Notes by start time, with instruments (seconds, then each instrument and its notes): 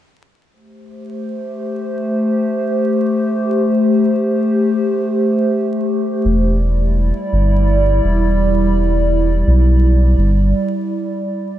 0.53 ambient pad A3 G4 C5
6.23 sub bass E1, ambient pad G3 E4 D5
7.33 sub bass G1
8.04 sub bass E1
9.47 sub bass B1
10.18 sub bass G1